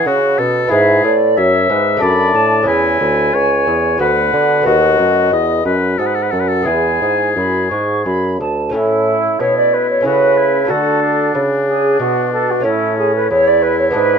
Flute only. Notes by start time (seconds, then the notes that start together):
Already playing: F#5
0.72 E5
1.04 D5
1.36 C#5
1.69 B4
2.02 B5
2.35 A5
2.67 G#5
4.00 F#5
4.67 D#5
5.99 F#5
6.67 G#5
7.37 B5
7.70 C#6
8.05 B5
8.40 A5
8.73 E4
9.39 C#5
9.56 D5
9.73 B4
9.89 C#5
10.05 B4
10.69 A4
11.66 G#4
12.00 F#4
12.32 A4
12.50 F#4
12.65 E4
12.98 G#4
13.14 B4
13.30 C#5
13.47 D5
13.62 B4
13.79 C#5
13.94 B4